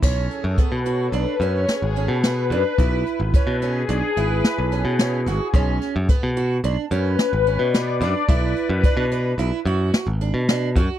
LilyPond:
<<
  \new Staff \with { instrumentName = "Analog synth pad" } { \time 5/4 \key b \dorian \tempo 4 = 109 cis''16 a'16 gis'16 a'16 b'8 cis''16 a'16 b'8 cis''8 gis'8 a'16 b'4~ b'16~ | b'16 r8. b'16 a'16 gis'4 b'8. a'16 gis'8 e'16 fis'16 gis'8 | r2 r8 b'4~ b'16 d''8. d''8 | b'16 b'4 r2. r8. | }
  \new Staff \with { instrumentName = "Twelve-string acoustic guitar" } { \time 5/4 \key b \dorian cis'4 b8 fis'8 d'8 cis'4 cis'8 b8 d'8 | e'4 cis'8 cis'8 d'8 e'4 cis'8 cis'8 fis'8 | cis'4 b8 fis'8 d'8 cis'4 cis'8 b8 d'8 | e'4 d'8 d'8 e'8 fis'4 d'8 d'8 fis'8 | }
  \new Staff \with { instrumentName = "Picked electric bass" } { \clef bass \time 5/4 \key b \dorian b,,8 r16 fis,16 r16 b,8. b,,16 r16 fis,8 r16 gis,,8 b,8. fis,16 r16 | b,,8 r16 gis,,16 r16 b,8. b,,16 r16 gis,,8 r16 b,,8 b,8. gis,,16 r16 | b,,8 r16 fis,16 r16 b,8. b,,16 r16 fis,8 r16 gis,,8 b,8. fis,16 r16 | b,,8 r16 fis,16 r16 b,8. b,,16 r16 fis,8 r16 gis,,8 b,8. fis,16 r16 | }
  \new DrumStaff \with { instrumentName = "Drums" } \drummode { \time 5/4 <cymc bd>8 hh8 <hh bd>8 hh8 hh8 hh8 <hh sn>8 hh8 <hh sn>8 hh8 | <hh bd>8 hh8 <hh bd>8 hh8 hh8 hh8 <hh sn>8 <hh sn>8 <hh sn>8 <hh sn>8 | <hh bd>8 <hh sn>8 <hh bd sn>8 hh8 hh8 hh8 <hh sn>8 hh8 <hh sn>8 <hh sn>8 | <hh bd>8 hh8 <hh bd>8 hh8 hh8 hh8 <hh sn>8 hh8 <hh sn>8 <hh bd>8 | }
>>